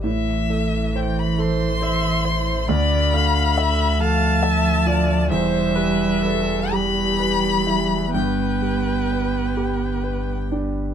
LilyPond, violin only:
\new Staff \with { instrumentName = "Violin" } { \time 6/8 \key a \minor \tempo 4. = 44 e''4 g''16 b''16 c'''4. | b''4. a''4. | e''4. b''4. | g''2~ g''8 r8 | }